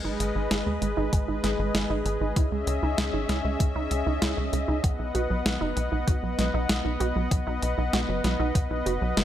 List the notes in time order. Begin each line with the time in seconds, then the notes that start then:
Already playing: G#3 G#4 B4 D#5
0.04 G#1 D#4
0.20 G#1 G#5, closed hi-hat
0.35 G#1 D#4
0.51 G#1 G#4, snare, closed hi-hat
0.66 D#2 G#3
0.82 G#1 G#3, closed hi-hat
0.97 G#1 D#4
1.13 G#1 G#5, kick, closed hi-hat
1.28 G#1 D#4
1.44 G#1 G#4, snare, closed hi-hat
1.59 G#1 G#3
1.74 G#1 G#3, snare, closed hi-hat
1.90 G#1 D#4
2.05 G#1 G#5, closed hi-hat
2.21 G#1 D#4
2.36 C#2 C#4 E4 E5, kick, closed hi-hat
2.52 C#2 G#3
2.67 C#2 G#3, closed hi-hat
2.83 C#2 D#4
2.98 C#2 D#5, snare, closed hi-hat
3.14 G#1 D#4
3.29 C#2 E4, snare, closed hi-hat
3.44 C#2 G#3
3.60 C#2 G#3, kick, closed hi-hat
3.75 C#2 D#4
3.91 C#2 D#5, closed hi-hat
4.06 C#2 D#4
4.22 C#2 E4, snare, closed hi-hat
4.37 C#2 G#3
4.53 C#2 G#3, closed hi-hat
4.68 C#2 D#4
4.84 B1 B3 B4 F#5, kick, closed hi-hat
4.99 B1 D#4
5.15 B1 F#4, closed hi-hat
5.30 B1 F#3
5.45 B1 F#3, snare, closed hi-hat
5.61 F#1 D#4
5.76 B1 F#5, closed hi-hat
5.92 B1 D#4
6.07 B1 F#4, kick, closed hi-hat
6.23 B1 F#3
6.38 B1 F#3, snare, closed hi-hat
6.54 B1 D#4
6.69 B1 F#5, snare, closed hi-hat
6.85 B1 D#4
7.00 B1 F#4, closed hi-hat
7.16 B1 F#3
7.31 B1 F#3, kick, closed hi-hat
7.47 B1 D#4
7.62 B1 F#5, closed hi-hat
7.78 B1 D#4
7.93 B1 F#4, snare, closed hi-hat
8.09 F#1 F#3
8.24 B1 F#3, snare, closed hi-hat
8.39 B1 D#4
8.55 B1 F#5, kick, closed hi-hat
8.70 B1 D#4
8.86 F#1 F#4, closed hi-hat
9.01 B1 F#3
9.17 F#1 F#3, snare, closed hi-hat